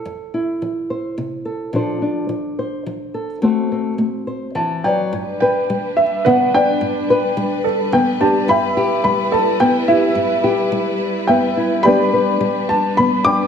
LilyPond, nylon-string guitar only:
\new Staff \with { instrumentName = "Nylon-string guitar" } { \time 3/4 \key d \minor \tempo 4 = 107 << { r8 e'4 c''4 a'8 | <f d' a' c''>8 d'4 c''4 a'8 | <a c' fis' c''>8 c'4 c''4. | \key g \major r8 b'4. b8 d'8~ |
d'8 b'4. b8 d'8 | r8 g'4. b8 e'8 | r8 g'4. b8 e'8 | <g b d' b'>8 b'4. b8 d'8 | } \\ { f,4 f4 c4 | bes,4 f4 f4 | d4 a4 e8 fis8 | g,4 g4 d4 |
g,4 g4 d4 | g,4 g4 g,4 | g,4 g4 g,4 | g,4 g4 d4 | } >> }